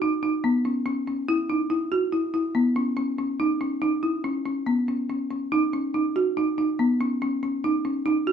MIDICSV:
0, 0, Header, 1, 2, 480
1, 0, Start_track
1, 0, Tempo, 423131
1, 1454, Time_signature, 5, 2, 24, 8
1, 9444, End_track
2, 0, Start_track
2, 0, Title_t, "Marimba"
2, 0, Program_c, 0, 12
2, 20, Note_on_c, 0, 63, 66
2, 233, Note_off_c, 0, 63, 0
2, 258, Note_on_c, 0, 63, 60
2, 472, Note_off_c, 0, 63, 0
2, 499, Note_on_c, 0, 59, 66
2, 712, Note_off_c, 0, 59, 0
2, 739, Note_on_c, 0, 61, 61
2, 952, Note_off_c, 0, 61, 0
2, 974, Note_on_c, 0, 61, 65
2, 1189, Note_off_c, 0, 61, 0
2, 1220, Note_on_c, 0, 61, 59
2, 1433, Note_off_c, 0, 61, 0
2, 1458, Note_on_c, 0, 64, 76
2, 1671, Note_off_c, 0, 64, 0
2, 1697, Note_on_c, 0, 63, 64
2, 1911, Note_off_c, 0, 63, 0
2, 1929, Note_on_c, 0, 64, 68
2, 2146, Note_off_c, 0, 64, 0
2, 2174, Note_on_c, 0, 66, 66
2, 2389, Note_off_c, 0, 66, 0
2, 2410, Note_on_c, 0, 64, 65
2, 2627, Note_off_c, 0, 64, 0
2, 2654, Note_on_c, 0, 64, 67
2, 2869, Note_off_c, 0, 64, 0
2, 2890, Note_on_c, 0, 59, 69
2, 3107, Note_off_c, 0, 59, 0
2, 3132, Note_on_c, 0, 61, 66
2, 3348, Note_off_c, 0, 61, 0
2, 3366, Note_on_c, 0, 61, 63
2, 3584, Note_off_c, 0, 61, 0
2, 3612, Note_on_c, 0, 61, 60
2, 3828, Note_off_c, 0, 61, 0
2, 3853, Note_on_c, 0, 63, 75
2, 4069, Note_off_c, 0, 63, 0
2, 4095, Note_on_c, 0, 61, 60
2, 4310, Note_off_c, 0, 61, 0
2, 4331, Note_on_c, 0, 63, 71
2, 4548, Note_off_c, 0, 63, 0
2, 4570, Note_on_c, 0, 64, 63
2, 4787, Note_off_c, 0, 64, 0
2, 4813, Note_on_c, 0, 61, 65
2, 5029, Note_off_c, 0, 61, 0
2, 5055, Note_on_c, 0, 61, 59
2, 5270, Note_off_c, 0, 61, 0
2, 5292, Note_on_c, 0, 59, 60
2, 5508, Note_off_c, 0, 59, 0
2, 5541, Note_on_c, 0, 61, 56
2, 5753, Note_off_c, 0, 61, 0
2, 5781, Note_on_c, 0, 61, 57
2, 5994, Note_off_c, 0, 61, 0
2, 6020, Note_on_c, 0, 61, 53
2, 6233, Note_off_c, 0, 61, 0
2, 6262, Note_on_c, 0, 63, 78
2, 6474, Note_off_c, 0, 63, 0
2, 6505, Note_on_c, 0, 61, 60
2, 6717, Note_off_c, 0, 61, 0
2, 6743, Note_on_c, 0, 63, 67
2, 6955, Note_off_c, 0, 63, 0
2, 6987, Note_on_c, 0, 66, 67
2, 7198, Note_off_c, 0, 66, 0
2, 7228, Note_on_c, 0, 63, 67
2, 7438, Note_off_c, 0, 63, 0
2, 7467, Note_on_c, 0, 63, 64
2, 7678, Note_off_c, 0, 63, 0
2, 7705, Note_on_c, 0, 59, 69
2, 7917, Note_off_c, 0, 59, 0
2, 7947, Note_on_c, 0, 61, 61
2, 8158, Note_off_c, 0, 61, 0
2, 8190, Note_on_c, 0, 61, 68
2, 8400, Note_off_c, 0, 61, 0
2, 8429, Note_on_c, 0, 61, 61
2, 8639, Note_off_c, 0, 61, 0
2, 8670, Note_on_c, 0, 63, 72
2, 8880, Note_off_c, 0, 63, 0
2, 8904, Note_on_c, 0, 61, 61
2, 9117, Note_off_c, 0, 61, 0
2, 9140, Note_on_c, 0, 63, 76
2, 9354, Note_off_c, 0, 63, 0
2, 9383, Note_on_c, 0, 66, 68
2, 9444, Note_off_c, 0, 66, 0
2, 9444, End_track
0, 0, End_of_file